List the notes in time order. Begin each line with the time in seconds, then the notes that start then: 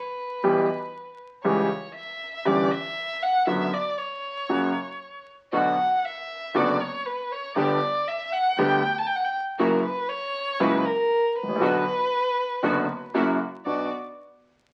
Already playing: B4
0.43 B1 B2 E3 G3 B3 G4
1.44 C#2 C#3 E3 G3 C#4 G4 C#5
1.95 E5
2.45 G1 G2 E3 G3 C#4 G4 D5
2.71 E5
3.22 F#5
3.47 F#1 F#2 D3 F#3 B3 F#4 E5
3.73 D5
3.98 C#5
4.49 F#1 F#2 C#3 F#3 A#3 F#4
5.52 B1 B2 D3 F#3 B3 D4 F#4 F#5
6.05 E5
6.54 F#1 F#2 D3 F#3 B3 D4 F#4 D5
6.81 C#5
7.06 B4
7.32 C#5
7.56 G1 G2 D3 G3 B3 D4 G4 D5
8.08 E5
8.33 F#5
8.57 D2 D3 G3 B3 D4 G4 G5
8.98 A5
9.06 G5
9.16 F#5
9.24 G5
9.59 F#1 F#2 C#3 F#3 A#3 E4 F#4 A#4
9.85 B4
10.09 C#5
10.60 C#2 C#3 F#3 A#3 E4 F#4 B4
10.85 A#4
11.35 A1 B4
11.43 G#1
11.49 A1
11.55 A#1
11.61 B1 B2 D3 F#3 B3 D4 F#4
12.63 F#1 F#2 D3 F#3 B3 D4 F#4
13.14 F#1 F#2 C#3 F#3 A#3 E4 F#4
13.65 B1 B3 D4 F#4 D5